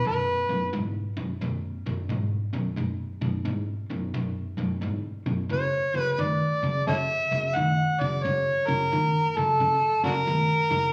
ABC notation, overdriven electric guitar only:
X:1
M:4/4
L:1/8
Q:"Swing" 1/4=88
K:B
V:1 name="Overdriven electric guitar" clef=bass
[B,,,F,,] [B,,,F,,] [B,,,G,,] [B,,,F,,] [B,,,F,,] [B,,,F,,] [B,,,G,,] [B,,,F,,] | [B,,,F,,] [B,,,F,,] [B,,,G,,] [B,,,F,,] [B,,,F,,] [B,,,F,,] [B,,,G,,] [B,,,F,,] | [F,,C,] [F,,C,] [F,,D,] [F,,C,] [F,,C,] [F,,C,] [F,,D,] [F,,C,] | [F,,C,] [F,,C,] [F,,D,] [F,,C,] [F,,C,] [F,,C,] [F,,D,] [F,,C,] |]